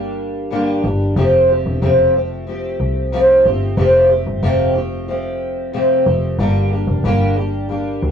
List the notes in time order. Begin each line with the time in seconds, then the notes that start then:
Already playing: G1 G3 A#3 D4 G4
0.50 G2 D3 G3 A#3 D4 G4
0.84 G1 G3 A#3 D4 G4
1.16 F1 F2 C3 F3 A3 C4 G4
1.49 F3 A3 C4 G4
1.66 E1
1.82 F1 F2 C3 F3 A3 C4 G4
2.15 F3 A3 C4 G4
2.47 F3 A3 C4 G4
2.80 C2
3.12 F2 C3 F3 A3 C4 G4
3.45 G1 F3 A3 C4 G4
3.77 F1 F2 C3 F3 A3 C4 G4
4.10 F3 A3 C4 G4
4.27 G1
4.43 F1 F2 C3 F3 A3 C4 G4
4.75 F3 A3 C4 G4
5.08 F3 A3 C4 G4
5.73 F2 C3 F3 A3 C4 G4
6.06 F1 F3 A3 C4 G4
6.39 G1 G2 D3 G3 A#3 D4 G4
6.71 G3 A#3 D4 G4
6.87 F1
7.04 G1 G2 D3 G3 A#3 D4 G4
7.36 G3 A#3 D4 G4
7.69 G3 A#3 D4 G4
8.02 D2